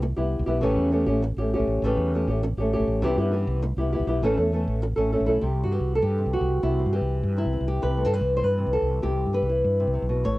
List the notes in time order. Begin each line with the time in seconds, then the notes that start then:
Already playing: C2
0.02 muted nylon-string guitar stroke
0.16 C2 B3 E4 G4
0.39 C2
0.46 B1 B3 E4 G4
0.61 A1 C#3 E3 A3 C#4 G4
0.77 E2
0.91 E3 A3 C#4 G4
1.06 A1 A3 C#4 G4
1.22 muted nylon-string guitar stroke
1.37 A1 C#4 G4
1.41 A3
1.54 A3 C#4 G4
1.59 A1
1.67 A1
1.82 A1 C#3 E3 A3 C#4 G4
1.97 E2
2.13 E3 A3 C#4 G4
2.28 A1 A3 C#4 G4
2.43 muted nylon-string guitar stroke
2.57 A1 A3 C#4 G4
2.73 A3 C#4 G4
2.80 A1
2.88 A1
3.02 C2 C3 E3 B3 E4 G4
3.17 G2 B3 E4 G4
3.32 E3 B3 E4 G4
3.47 C2
3.62 muted nylon-string guitar stroke
3.77 C2 B3 E4 G4
3.93 B3 E4 G4
4.00 C2
4.07 B1 B3 E4 G4
4.22 A1 C#3 E3 A3 C#4 A4
4.37 E2 A3 C#4 A4
4.52 E3 A3 C#4 A4
4.68 A1
4.82 muted nylon-string guitar stroke
4.96 A1 A3 C#4 A4
5.13 A3 C#4 A4
5.21 A1
5.26 B1 A3 C#4 E4 A4
5.41 C2 C3 G4
5.63 G2 F#4
5.71 E3 G4
5.80 C2
5.95 A4
6.02 G2 G4
6.18 C3
6.26 C2
6.33 F#4
6.41 C2
6.63 C2 C3 E4
6.79 C4
6.86 G2
6.93 E3 G4
7.01 C2
7.23 G2
7.37 C3 E4
7.46 C2
7.53 C4
7.61 C2
7.68 G4
7.82 C2 C3 B4
7.97 A3
8.05 G2 C4 A4
8.13 E3 B4
8.21 C2
8.37 C5
8.44 G2 B4
8.58 C3
8.67 C2
8.73 A4
8.82 C2
9.02 C2 C3 G4
9.26 G2
9.33 E3 B4
9.42 C2
9.49 E4
9.64 G2
9.80 C3
9.87 C2
9.94 C3
10.02 B1
10.09 B2
10.24 A1 A2 C#5